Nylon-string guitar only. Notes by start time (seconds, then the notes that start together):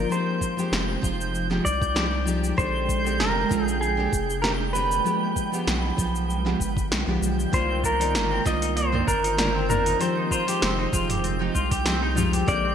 0.09 F3 G#3 D#4 G4
0.57 F3 G#3 D#4 G4
1.02 F3 G#3 D#4 F4
1.50 F3 G#3 D#4 G4
1.95 F3 G#3 D#4 G4
2.26 F3 G#3 D#4 G4
2.57 D3 G#3 C4 G4
3.04 D3 G#3 C4 G4
3.49 D3 G#3 C4 F4
3.97 D3 G#3 C4 G4
4.42 D3 G#3 C4 G4
4.73 D3 G#3 C4 G4
5.04 F3 G#3 B3 G4
5.52 F3 G#3 B3 G4
5.97 F3 G#3 B3 F4
6.45 F3 G#3 B3 G4
7.06 F3 G#3 B3 G4
7.52 D#3 A#3 D4 F4
7.99 D#3 A#3 F4 D5
8.44 D#3 A#3 F4 D#5
8.92 D#3 A#3 D4 F4
9.37 D#3 A#3 D4 F4
9.69 D#3 A#3 D4 F4
9.99 F3 G#3 D#4 G4
10.47 F3 G#3 D#4 G4
10.92 F3 G#3 D#4 F4
11.39 F3 G#3 D#4 G4
11.84 F3 G#3 D#4 G4
12.15 F3 G#3 D#4 G4
12.46 D3 G#3 C4 G4